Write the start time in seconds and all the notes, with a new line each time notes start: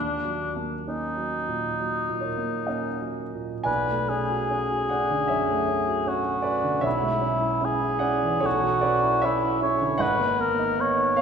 Already playing: D#2 D4
0.25 F#3
0.56 A#3
0.88 C#4 D#4
1.17 F#3
1.48 A#2
1.80 F#3
2.09 A#2
2.21 A#4 C#5
2.37 A#3
2.67 C#4 A#4 D#5
3.00 F#3
3.35 A#2
3.64 B1 B4 D5 G#5
3.88 A3
4.09 C#4 G#4
4.30 F#4
4.51 C#4
4.71 F#4
4.89 C#4 D5 F#5
5.10 D3
5.28 F#2 C#5 E5
5.50 A3
5.68 C#4
5.87 F#4
6.07 C#4 F#4
6.25 F#4
6.42 C#4 B4 D5
6.64 D3
6.81 B1 C#5 E5
6.86 E4
7.02 G#3
7.22 C#4
7.41 E4
7.61 C#4 G#4
7.81 E4
7.99 C#4 D5 F#5
8.23 E3
8.40 B1 A4 C#5
8.46 F#4
8.63 F#3
8.81 C#4 B4 D5
9.03 E4
9.22 C#4 E4 C#5 E5
9.43 E4
9.62 C#4 C#5
9.81 D3
9.98 G#1 B4 D#5 F#5
10.20 A#3
10.39 B3 A#4
10.59 D#4
10.78 B3 C#5
10.97 D#4
11.16 B3 C#5 F5